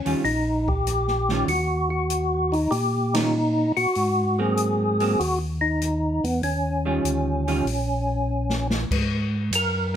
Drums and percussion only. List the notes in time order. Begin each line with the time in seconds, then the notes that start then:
0.06 open hi-hat
0.25 open hi-hat
0.68 kick
0.87 cross-stick, closed hi-hat
1.08 snare
1.29 snare
1.48 open hi-hat
2.10 closed hi-hat
2.53 open hi-hat
2.72 open hi-hat
3.15 snare, ride
3.77 open hi-hat
3.95 open hi-hat
4.57 closed hi-hat
5.00 open hi-hat
5.20 open hi-hat
5.82 cross-stick, closed hi-hat
6.24 open hi-hat
6.43 open hi-hat
7.05 closed hi-hat
7.48 open hi-hat
7.67 open hi-hat
8.50 snare
8.70 snare
8.91 kick, crash
9.53 hi-hat pedal, ride